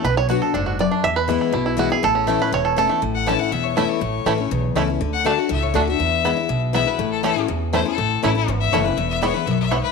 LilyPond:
<<
  \new Staff \with { instrumentName = "Fiddle" } { \time 4/4 \key a \major \tempo 4 = 242 r1 | r1 | r1 | r8 fis''8 a''8 fis''8 e''8 cis''8 e''8 cis''8~ |
cis''2~ cis''8 r4. | r8 fis''8 a''8 fis''8 e''8 cis''8 e''8 e''8~ | e''2~ e''8 r8 e''8 b'8~ | b'8 a'8 a'4 r4 c''8 a'8~ |
a'4 e'8 e'8 r8 e''8 cis''8 b'8 | e''8 e''8 cis''8 b'8 e''8 e''8 cis''8 b'8 | }
  \new Staff \with { instrumentName = "Five-string banjo" } { \time 4/4 \key a \major << { b'8 cis''4 r4. d''4 | e''8 b'4 r4. fis'8 gis'8 | a'4. b'8 cis''4 a'4 | r4 <a cis' e'>8 r4. <a cis' e'>8 r8 |
r4 <a cis' e'>8 r4. <a cis' e'>8 r8 | r4 <a d' fis'>8 r4. <a d' fis'>8 r8 | r4 <b e'>8 r4. <b e'>8 r8 | r4 <a cis' e'>8 r4. <a cis' e'>8 r8 |
r4 <a cis' e'>8 r4. <a cis' e'>8 r8 | r4 <b e'>8 r4. <b e'>8 r8 | } \\ { r4 fis'8 a'8 d'8 fis'4 d'8 | r4 e'8 e'8 e'8 e'4. | r8 cis'8 a4. a'4 a8 | r1 |
r1 | r1 | r1 | r1 |
r1 | r1 | } >> }
  \new Staff \with { instrumentName = "Steel-string acoustic guitar" } { \time 4/4 \key a \major << { r4 <fis b d' fis'>8 <d' fis'>8 r2 | r4 <e gis b e'>4 r4 <e gis b e'>8 <b e'>8 | r4 <e a cis' e'>8 <cis' e'>8 r4 <e a cis' e'>8 <cis' e'>8 | r4 <e a cis' e'>8 <cis' e'>8 r4 <e a cis' e'>4 |
r4 <e a cis' e'>8 <cis' e'>8 r4 <e a cis' e'>8 <cis' e'>8 | r4 <d a d' fis'>8 <d' fis'>8 r4 <d a d' fis'>8 <d' fis'>8 | r4 <e gis b e'>8 e'8 r4 <e gis b e'>8 <b e'>8 | r4 <e a cis' e'>8 <cis' e'>8 r4 <e a cis' e'>8 <cis' e'>8 |
r4 <e a cis' e'>8 <cis' e'>8 r4 <e a cis' e'>8 <cis' e'>8 | r4 <e gis b e'>8 <b e'>8 r2 | } \\ { b,2 gis,4 fis,4 | e,2 b,2 | a,2 e,2 | a,2 e,2 |
a,2 e,2 | d2 a,2 | e,2 b,2 | a,2 e,2 |
a,2 e,2 | e,2 fis,4 gis,4 | } >> }
  \new Staff \with { instrumentName = "Upright bass" } { \clef bass \time 4/4 \key a \major b,,2 fis,,2 | e,2 b,,2 | a,,2 e,,2 | a,,2 e,,2 |
a,,4 a,,4 b,,4 cis,4 | d,2 cis,4 d,4 | e,2 b,,2 | a,,2 e,2 |
a,,4 a,,4 gis,,4 fis,,4 | e,,2 b,,2 | }
>>